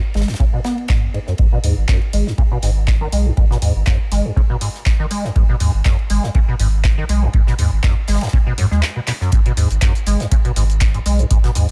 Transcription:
0.14 sub bass G#1, acid bass G#3, snare, ride
0.21 snare, ride
0.28 acid bass F#2, snare, ride
0.34 snare, ride
0.40 acid bass C#3, kick, ride
0.53 acid bass B2
0.64 acid bass B3, snare, ride
0.78 ride
0.88 acid bass G#2, kick, snare, clap, ride
1.03 acid bass F#2
1.14 acid bass G#2, ride
1.27 acid bass F#2, snare
1.38 sub bass G#1, acid bass G#2, kick, ride
1.52 acid bass B2
1.64 sub bass D#2, acid bass G#2, open hi-hat, ride
1.77 sub bass G#1
1.88 acid bass F#2, kick, snare, clap, ride
2.02 ride
2.13 sub bass G#1, acid bass G#3, open hi-hat, ride
2.27 acid bass F#2, snare
2.38 acid bass C#3, kick, ride
2.51 acid bass B2
2.62 sub bass G#1, acid bass G#2, snare, open hi-hat, ride
2.87 kick, snare, clap, ride
3.01 acid bass D#3
3.12 sub bass B1, acid bass G#3, open hi-hat, ride
3.26 acid bass F#2
3.37 sub bass G#1, acid bass G#2, kick, ride
3.51 acid bass B2, snare
3.62 sub bass D#2, acid bass G#2, open hi-hat, ride
3.75 sub bass G#1
3.86 acid bass F#2, kick, snare, clap, ride
4.12 sub bass G#1, acid bass G#3, snare, open hi-hat, ride
4.25 acid bass F#2
4.36 acid bass C#3, kick, ride
4.50 acid bass B2
4.61 acid bass G#2, open hi-hat, ride
4.74 snare
4.86 kick, snare, clap, ride
5.00 acid bass D#3
5.11 acid bass G#3, open hi-hat, ride
5.24 acid bass F#2, snare
5.36 sub bass G#1, acid bass G#2, kick, ride
5.49 acid bass B2
5.60 sub bass D#2, acid bass G#2, open hi-hat, ride
5.74 sub bass G#1
5.85 acid bass F#2, kick, snare, clap, ride
5.99 ride
6.10 sub bass G#1, acid bass G#3, open hi-hat, ride
6.23 acid bass F#2, snare
6.35 acid bass C#3, kick, ride
6.48 acid bass B2
6.59 sub bass G#1, acid bass G#2, open hi-hat
6.84 kick, snare, clap, ride
6.98 acid bass D#3
7.09 sub bass B1, acid bass G#3, open hi-hat, ride
7.23 acid bass F#2
7.33 sub bass G#1, acid bass G#2, kick, ride
7.47 acid bass B2, snare
7.58 sub bass D#2, acid bass G#2, open hi-hat, ride
7.72 sub bass G#1
7.83 acid bass F#2, kick, snare, clap, ride
8.08 sub bass G#1, acid bass G#3, snare, open hi-hat, ride
8.14 snare, ride
8.21 acid bass F#2, snare, ride
8.27 snare, ride
8.33 acid bass C#3, kick, ride
8.46 acid bass B2
8.58 acid bass F#2, sub bass G#2, open hi-hat, ride
8.71 sub bass D#2, acid bass G#3, snare
8.82 snare, clap, ride
8.96 acid bass B2
9.07 acid bass B2, snare, clap, open hi-hat, ride
9.21 acid bass F#2, snare
9.32 sub bass G#1, kick, closed hi-hat, ride, shaker
9.46 acid bass B2, closed hi-hat
9.57 sub bass D#2, acid bass G#2, open hi-hat, ride, shaker
9.70 sub bass G#1, closed hi-hat, shaker
9.81 acid bass F#2, kick, snare, clap, closed hi-hat, ride, shaker
9.95 closed hi-hat, ride, shaker
10.06 sub bass G#1, acid bass G#3, open hi-hat, ride, shaker
10.20 acid bass F#2, snare, closed hi-hat, shaker
10.31 acid bass C#3, kick, closed hi-hat, ride, shaker
10.45 acid bass B2, closed hi-hat
10.56 sub bass G#1, acid bass G#2, snare, open hi-hat, ride, shaker
10.70 closed hi-hat, shaker
10.81 kick, snare, clap, closed hi-hat, ride, shaker
10.94 acid bass G#2, closed hi-hat
11.06 sub bass B1, acid bass G#3, open hi-hat, ride, shaker
11.19 acid bass F#2, closed hi-hat, shaker
11.31 sub bass G#1, acid bass G#2, kick, closed hi-hat, ride, shaker
11.44 acid bass B2, snare, closed hi-hat
11.55 sub bass D#2, acid bass G#2, open hi-hat, ride, shaker

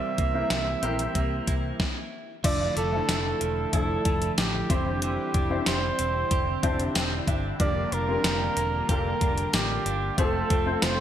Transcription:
Already playing: grand piano C3 C4 E4 G4 A#4, analog synth pad E3 A#3 C4 G4, clean electric guitar G3 C4 G4, flugelhorn E5
0.18 fingered electric bass C2, clean electric guitar A#3, kick, closed hi-hat
0.34 grand piano C4 E4 G4 A#4
0.50 fingered electric bass C2, clean electric guitar E4, snare, closed hi-hat
0.82 fingered electric bass A#1, grand piano C4 E4 G4 A#4, clean electric guitar G4, closed hi-hat
0.99 closed hi-hat
1.15 fingered electric bass C2, clean electric guitar A#3, kick, closed hi-hat
1.47 fingered electric bass C2, clean electric guitar E4, kick, closed hi-hat
1.80 kick, snare
2.44 fingered electric bass F1, analog synth pad D3 F3 A3 E4, clean electric guitar F3, grand piano A3 D4 E4 F4 A4, flugelhorn D5, kick, closed hi-hat, crash
2.76 fingered electric bass F1, clean electric guitar A3, flugelhorn A4, closed hi-hat
2.92 grand piano F3 A3 D4 E4 A4
3.09 fingered electric bass F1, clean electric guitar E4, snare, closed hi-hat, tambourine
3.41 fingered electric bass E1, clean electric guitar F3, closed hi-hat
3.72 fingered electric bass F1, grand piano F3 A3 D4 E4 A4, clean electric guitar E4, flugelhorn A4, kick, closed hi-hat
4.05 fingered electric bass F1, clean electric guitar A3, kick, closed hi-hat
4.22 closed hi-hat
4.38 fingered electric bass A1, clean electric guitar F3, flugelhorn G4, snare, closed hi-hat, tambourine
4.69 fingered electric bass F1, analog synth pad D3 G3 C4, clean electric guitar E3, grand piano C4 D4 E4 G4 C5, kick, closed hi-hat
5.02 clean electric guitar E3, flugelhorn G4, closed hi-hat
5.34 fingered electric bass F1, clean electric guitar D4, kick, closed hi-hat
5.50 grand piano C4 D4 E4 G4 C5
5.66 fingered electric bass F1, clean electric guitar G4, flugelhorn C5, snare, closed hi-hat, tambourine
5.99 fingered electric bass E1, clean electric guitar C4, closed hi-hat
6.31 fingered electric bass F1, clean electric guitar G4, kick, closed hi-hat
6.63 fingered electric bass F1, grand piano C4 D4 E4 G4 C5 A5, clean electric guitar D4, kick, closed hi-hat
6.80 closed hi-hat
6.95 fingered electric bass E1, clean electric guitar C4, grand piano G5, snare, closed hi-hat, tambourine
7.27 fingered electric bass G1, clean electric guitar D4, grand piano E5, kick, closed hi-hat
7.60 fingered electric bass F1, clean electric guitar F3, analog synth pad G3 A#3 F4, grand piano A#3 D4 F4 G4 A#4, flugelhorn D5, kick, closed hi-hat
7.92 fingered electric bass F1, clean electric guitar D4, flugelhorn A#4, closed hi-hat
8.08 grand piano A#3 C4 F4 G4 A#4
8.14 grand piano D4
8.24 fingered electric bass F1, clean electric guitar G4, snare, closed hi-hat, tambourine
8.57 fingered electric bass E1, clean electric guitar A#3, closed hi-hat
8.88 fingered electric bass F1, grand piano A#3 D4 F4 G4 A4, clean electric guitar G4, flugelhorn A#4, kick, closed hi-hat
8.96 grand piano A#4
9.21 fingered electric bass F1, clean electric guitar D4, kick, closed hi-hat
9.38 closed hi-hat
9.53 fingered electric bass A1, clean electric guitar A#3, flugelhorn G4, snare, closed hi-hat, tambourine
9.86 fingered electric bass G1, clean electric guitar D4, closed hi-hat
10.18 fingered electric bass F1, analog synth pad C3 F3 A3, grand piano A3 C4 F4 A4 C5, clean electric guitar A3, flugelhorn A4, kick, closed hi-hat
10.50 fingered electric bass F1, clean electric guitar C4, kick, closed hi-hat
10.66 grand piano A3 C4 F4 A4 C5
10.82 fingered electric bass F1, clean electric guitar F4, flugelhorn C5, snare, closed hi-hat, tambourine

